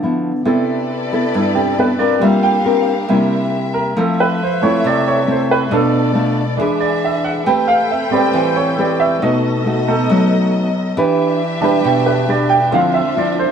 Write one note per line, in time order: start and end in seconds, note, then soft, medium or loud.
0.00 0.44 D3 medium
0.00 0.31 F3 soft
0.00 0.31 B3 medium
0.00 0.31 E4 medium
0.45 0.75 C3 soft
0.45 1.31 C3 medium
0.45 0.89 B3 soft
0.45 0.75 B3 soft
0.45 3.93 D4 medium
0.45 0.75 E4 soft
0.45 0.90 E4 medium
0.45 2.20 E4 medium
0.45 2.20 A4 medium
0.45 0.90 A4 medium
0.45 2.20 B4 medium
0.45 2.20 D5 medium
1.12 1.75 B3 medium
1.12 1.75 E4 medium
1.12 1.75 A4 medium
1.34 2.20 G2 medium
1.34 1.53 E4 soft
1.54 1.75 C3 soft
1.54 1.75 B3 soft
1.54 1.75 E4 soft
1.54 1.77 G4 medium
1.78 1.91 B3 medium
1.78 1.91 E4 medium
1.78 1.91 A4 medium
1.78 2.00 B4 medium
1.99 2.62 C4 soft
1.99 2.62 F4 soft
1.99 2.62 A#4 medium
1.99 2.21 D5 medium
2.19 2.83 G3 soft
2.19 3.07 G3 medium
2.19 2.83 A#3 soft
2.19 2.84 F4 soft
2.19 3.09 G4 medium
2.19 3.95 A#4 medium
2.19 2.43 E5 medium
2.19 3.09 F5 medium
2.43 2.56 G5 medium
2.65 2.93 C4 medium
2.65 2.94 F4 medium
2.65 2.94 A#4 medium
3.08 3.92 C3 soft
3.08 3.94 C3 medium
3.08 3.93 G3 medium
3.08 3.93 A#3 medium
3.08 3.93 A#3 soft
3.08 3.93 E4 soft
3.08 3.94 E4 medium
3.08 3.96 E5 medium
3.74 3.96 A#4 medium
3.96 4.82 F3 medium
3.96 5.70 A3 medium
3.96 4.40 A3 medium
3.96 4.41 C4 medium
3.96 4.40 E4 medium
3.96 4.19 A4 medium
3.96 5.70 E5 medium
4.20 4.41 B4 medium
4.43 4.63 C5 medium
4.62 5.67 F3 soft
4.62 5.68 A3 soft
4.62 5.25 A3 medium
4.62 5.25 C4 medium
4.62 5.68 E4 soft
4.62 5.25 E4 medium
4.62 4.84 C#5 medium
4.84 5.70 C3 medium
4.84 5.07 D5 medium
5.08 5.28 C#5 medium
5.27 5.70 A3 soft
5.27 5.70 C4 medium
5.27 5.70 E4 medium
5.27 5.51 C5 medium
5.51 5.72 B4 medium
5.71 6.34 B2 soft
5.71 6.57 B2 medium
5.71 6.34 A3 soft
5.71 6.12 A3 medium
5.71 6.59 B3 medium
5.71 6.12 D4 medium
5.71 6.34 D4 soft
5.71 6.12 F4 medium
5.71 6.58 A4 medium
5.71 6.34 A4 medium
5.71 6.59 D5 medium
6.15 6.43 A3 medium
6.15 6.43 D4 medium
6.15 6.44 F4 medium
6.57 6.87 E3 soft
6.57 7.45 E3 medium
6.57 6.88 G#3 soft
6.57 6.88 D4 soft
6.57 7.46 D4 medium
6.57 7.43 D4 soft
6.57 7.46 G#4 medium
6.57 7.44 G#4 medium
6.57 7.46 E5 medium
6.61 7.44 B4 medium
6.80 7.02 D5 medium
7.05 7.25 E5 medium
7.24 7.46 F#5 medium
7.46 8.32 A3 medium
7.46 9.20 C4 medium
7.46 7.90 C4 medium
7.46 7.90 G4 medium
7.46 10.94 A4 medium
7.46 9.20 B4 medium
7.46 7.90 B4 medium
7.46 7.68 G5 medium
7.46 9.20 G5 medium
7.68 7.89 F5 medium
7.91 8.12 E5 medium
8.10 8.40 A2 soft
8.10 8.41 G3 soft
8.10 8.41 C4 soft
8.10 8.74 C4 medium
8.10 8.75 G4 medium
8.10 8.75 B4 medium
8.10 8.34 D5 medium
8.33 9.19 E3 medium
8.33 8.56 C5 medium
8.56 8.78 C#5 medium
8.78 9.20 C4 medium
8.78 9.20 G4 medium
8.78 9.21 B4 medium
8.78 9.01 D5 medium
9.00 9.21 E5 medium
9.22 10.08 B2 medium
9.22 9.63 A3 medium
9.22 10.96 B3 medium
9.22 9.62 D#4 medium
9.22 9.63 F#4 medium
9.22 9.84 D#5 medium
9.22 10.96 D#5 medium
9.66 9.94 A3 medium
9.66 9.94 D#4 medium
9.66 9.95 F#4 medium
9.87 10.50 B2 soft
9.87 10.50 A3 soft
9.87 10.50 D#4 soft
9.87 10.29 A4 medium
10.10 10.95 F#3 medium
10.10 10.69 A3 medium
10.10 10.69 D#4 medium
10.10 10.69 F#4 medium
10.97 11.82 E3 medium
10.97 11.41 D4 medium
10.97 12.71 D4 medium
10.97 11.41 G4 medium
10.97 12.71 G4 medium
10.97 11.41 B4 medium
10.97 12.72 E5 medium
11.61 12.67 E3 soft
11.61 12.68 G3 soft
11.61 12.68 D4 soft
11.61 12.25 D4 medium
11.61 12.25 G4 medium
11.61 12.26 B4 medium
11.61 11.83 A5 medium
11.84 12.70 B2 medium
11.84 12.06 G5 medium
12.06 12.28 B4 medium
12.28 12.58 D4 medium
12.28 12.58 G4 medium
12.28 12.58 B4 medium
12.28 12.51 D5 medium
12.50 12.71 G5 medium
12.71 13.01 D3 soft
12.71 13.52 D3 medium
12.71 13.01 F3 soft
12.71 13.00 F3 medium
12.71 13.02 C4 soft
12.71 13.01 C4 medium
12.71 13.52 D4 medium
12.71 13.01 E4 medium
12.71 13.52 F4 medium
12.71 13.52 C5 medium
12.71 13.52 E5 medium
12.71 12.94 F5 medium
12.94 13.15 E5 medium
13.17 13.45 F3 medium
13.17 13.45 C4 medium
13.17 13.45 E4 medium
13.17 13.38 D5 medium
13.39 13.52 C5 medium